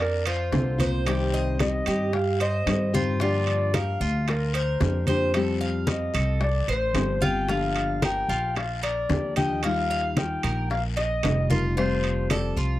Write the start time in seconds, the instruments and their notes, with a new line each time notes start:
Already playing: upright bass F2, cuban tres D4
0.00 clarinet A#4, muted nylon-string guitar stroke
0.26 cuban tres F4, clarinet C5, high conga, high timbale
0.52 upright bass C2, nylon-string guitar D3 A#3 C4 F4, high bongo, low bongo, high conga, low timbale, short guiro
0.78 nylon-string guitar A#3 C4 F4, cuban tres C5, clarinet C5, high conga, high timbale, short guiro
1.05 nylon-string guitar C3 D#3 G3 C4 G4, cuban tres G4, high bongo, high conga, high timbale, long guiro
1.33 cuban tres D#5, high conga
1.59 nylon-string guitar D#3 G3 C4 G4, clarinet D#5, high bongo, high conga, high timbale, low timbale, short guiro
1.86 upright bass G2, cuban tres G4, high bongo, high conga, high timbale, short guiro
2.13 clarinet F5, muted nylon-string guitar stroke, high bongo, high conga, long guiro
2.40 cuban tres C5, clarinet D#5, high bongo, high conga, high timbale
2.66 upright bass G2, nylon-string guitar D#3 G3 C4 G4, high bongo, low bongo, high conga, high timbale, low timbale, short guiro
2.93 nylon-string guitar D#3 G3 C4 G4, cuban tres F4, clarinet C5, high bongo, high conga, short guiro
3.20 nylon-string guitar D3 F3 A#3 D4 G4, cuban tres F4, clarinet D5, high bongo, high conga, long guiro
3.47 high conga, high timbale
3.74 nylon-string guitar F3 A#3 D4 G4, cuban tres A#4, clarinet F5, high bongo, high conga, high timbale, low timbale, short guiro
4.00 upright bass D2, cuban tres F4, short guiro
4.27 clarinet A#4, muted nylon-string guitar stroke, high bongo, high conga, high timbale, long guiro
4.54 cuban tres A#4, clarinet C5, high conga, high timbale
4.81 upright bass F2, nylon-string guitar F3 A#3 D4 G4, high bongo, low bongo, high conga, low timbale, short guiro
5.07 nylon-string guitar F3 A#3 D4 G4, cuban tres C5, clarinet C5, high conga, high timbale, short guiro
5.34 nylon-string guitar F3 G3 C4 G4, cuban tres A4, high bongo, high conga, high timbale, long guiro
5.61 cuban tres F5, high conga
5.87 nylon-string guitar F3 G3 C4 G4, clarinet D#5, high bongo, high conga, high timbale, low timbale, short guiro
6.14 upright bass C2, cuban tres A4, high bongo, high conga, high timbale, short guiro
6.41 clarinet D5, muted nylon-string guitar stroke, high bongo, high conga, long guiro
6.68 upright bass A1, cuban tres C5, clarinet C5, high bongo, high conga, high timbale
6.94 upright bass G1, nylon-string guitar F3 G3 C4 G4, high bongo, low bongo, high conga, high timbale, low timbale, short guiro
7.21 nylon-string guitar G3 C4 G4, cuban tres F4, clarinet G5, high bongo, high conga, short guiro
7.48 nylon-string guitar D3 F3 A#3 D4 G4, cuban tres F4, clarinet F5, high bongo, high conga, long guiro
7.76 high conga, high timbale
8.02 nylon-string guitar F3 A#3 D4 G4, cuban tres A#4, clarinet G5, high bongo, high conga, high timbale, low timbale, short guiro
8.29 upright bass A#1, cuban tres F4, short guiro
8.56 clarinet F5, muted nylon-string guitar stroke, high bongo, high conga, high timbale, long guiro
8.83 cuban tres A#4, clarinet D5, high conga, high timbale
9.09 upright bass D#2, nylon-string guitar F3 A#3 D4 G4, high bongo, low bongo, high conga, low timbale, short guiro
9.36 nylon-string guitar F3 A#3 D4 G4, cuban tres D#5, clarinet G5, high conga, high timbale, short guiro
9.63 nylon-string guitar D#3 G3 D#4 F4, cuban tres A#4, clarinet F5, high bongo, high conga, high timbale, long guiro
9.91 cuban tres F5, high conga
10.17 nylon-string guitar D#3 G3 D#4 F4, clarinet G5, high bongo, high conga, high timbale, low timbale, short guiro
10.43 upright bass A#1, cuban tres A#4, high bongo, high conga, high timbale, short guiro
10.70 clarinet F5, muted nylon-string guitar stroke, high bongo, high conga, long guiro
10.97 cuban tres D#5, clarinet D#5, high bongo, high conga, high timbale
11.23 upright bass F1, nylon-string guitar D#3 G3 D#4 F4, high bongo, low bongo, high conga, high timbale, low timbale, short guiro
11.50 nylon-string guitar G3 D#4 F4, cuban tres F4, clarinet A#4, high bongo, high conga, short guiro
11.77 nylon-string guitar F3 G3 C4 G4, cuban tres F4, clarinet C5, high bongo, high conga, long guiro
12.04 high conga, high timbale
12.30 nylon-string guitar F3 G3 C4 G4, cuban tres A4, clarinet D5, high bongo, high conga, high timbale, low timbale, short guiro
12.56 upright bass C2, cuban tres F4, short guiro